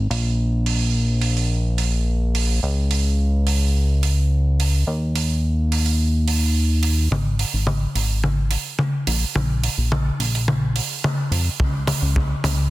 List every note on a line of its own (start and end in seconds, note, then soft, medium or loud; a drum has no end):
0.10 2.60 A#1 medium
0.10 open hi-hat loud
0.66 open hi-hat loud
1.21 open hi-hat medium
1.37 open hi-hat medium
1.78 open hi-hat loud
2.35 open hi-hat medium
2.63 4.84 C#2 medium
2.91 open hi-hat medium
3.47 open hi-hat medium
4.03 open hi-hat medium
4.60 open hi-hat medium
4.87 7.09 D#2 medium
5.16 open hi-hat loud
5.72 open hi-hat medium
5.86 open hi-hat medium
6.28 open hi-hat loud
6.83 open hi-hat loud
7.11 7.45 G#1 loud
7.11 mid tom soft
7.39 open hi-hat medium
7.54 7.87 G#1 medium
7.67 mid tom soft
7.95 8.57 G#1 medium
7.95 open hi-hat medium
8.24 mid tom soft
8.51 open hi-hat loud
8.79 mid tom medium
9.07 9.25 A#1 loud
9.07 open hi-hat loud
9.35 9.69 A#1 loud
9.35 mid tom medium
9.63 open hi-hat medium
9.78 10.11 A#1 medium
9.92 mid tom medium
10.19 10.81 A#1 medium
10.19 open hi-hat medium
10.35 open hi-hat medium
10.48 mid tom medium
10.76 open hi-hat loud
11.04 mid tom medium
11.31 11.49 F2 loud
11.31 open hi-hat loud
11.60 11.93 C#2 loud
11.60 kick loud
11.60 mid tom medium
11.87 open hi-hat loud
11.87 mid tom medium
12.02 12.35 C#2 medium
12.16 kick loud
12.16 mid tom medium
12.44 12.70 C#2 medium
12.44 open hi-hat loud
12.44 mid tom medium